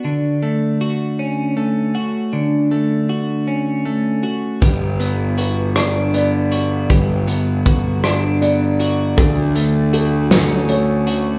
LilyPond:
<<
  \new Staff \with { instrumentName = "Felt piano" } { \time 6/8 \key g \lydian \tempo 4. = 53 r2. | r2. | b'4 b'4 d''4 | b'4 b'4 d''4 |
a'4 a'4 cis''4 | }
  \new Staff \with { instrumentName = "Clean electric guitar" } { \time 6/8 \key g \lydian d8 a8 fis'8 cis'8 a8 fis'8 | d8 a8 fis'8 cis'8 a8 fis'8 | g8 b8 fis'8 d'8 b8 fis'8 | g8 b8 fis'8 d'8 b8 fis'8 |
d8 a8 fis'8 cis'8 a8 fis'8 | }
  \new Staff \with { instrumentName = "Picked electric bass" } { \clef bass \time 6/8 \key g \lydian r2. | r2. | g,,2. | g,,2. |
d,2. | }
  \new DrumStaff \with { instrumentName = "Drums" } \drummode { \time 6/8 r4. r4. | r4. r4. | <hh bd>8 hh8 hh8 <hh ss>8 hh8 hh8 | <hh bd>8 hh8 <hh bd>8 <hh ss>8 hh8 hh8 |
<hh bd>8 hh8 hh8 <hh sn>8 hh8 hh8 | }
>>